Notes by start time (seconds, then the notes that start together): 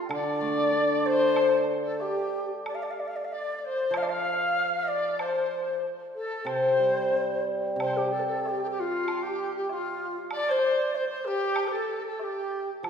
0.01 G5 A5
0.09 D3 D5 F5, high woodblock
0.14 D5
0.41 A3
0.73 D4
1.05 C5
1.36 high woodblock
1.83 A4
2.00 G4, low woodblock
2.66 D5, high woodblock
2.74 F5
2.82 D5
2.90 F5
2.99 D5
3.07 F5
3.15 D5
3.24 F5
3.31 D5
3.57 D5
3.64 C5
3.91 F3, high woodblock
3.96 F5
4.02 D5
4.09 F5
4.87 D5
5.19 C5, high woodblock
6.14 A4
6.45 C3 C5, high woodblock
6.80 G3
7.13 C4
7.76 C3
7.80 C5, high woodblock
7.97 G4
8.12 A4
8.19 C5
8.28 A4
8.43 A4, low woodblock
8.47 G4
8.62 G4 A4
8.71 G4
8.80 F4
9.08 high woodblock
9.23 G4
9.55 G4
9.69 F4, low woodblock
10.31 D5, high woodblock
10.49 C5
10.64 D5
10.94 C5, low woodblock
11.09 C5
11.25 G4
11.56 high woodblock
11.68 C5
11.72 A4
12.07 A4
12.19 G4, low woodblock
12.83 F3 F4, high woodblock